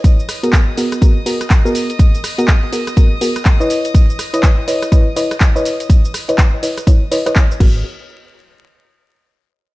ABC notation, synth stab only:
X:1
M:4/4
L:1/16
Q:"Swing 16ths" 1/4=123
K:G#m
V:1 name="Synth stab"
z3 [B,FGA] z2 [B,FGA]2 [B,FGA] z [B,FGA] z2 [B,FGA]2 z | z3 [B,FGA] z2 [B,FGA]2 [B,FGA] z [B,FGA] z2 [EBcd]2 z | z3 [EBcd] z2 [EBcd]2 [EBcd] z [EBcd] z2 [EBcd]2 z | z3 [EBcd] z2 [EBcd]2 [EBcd] z [EBcd] [EBcd] z2 [B,FGA]2 |
z16 |]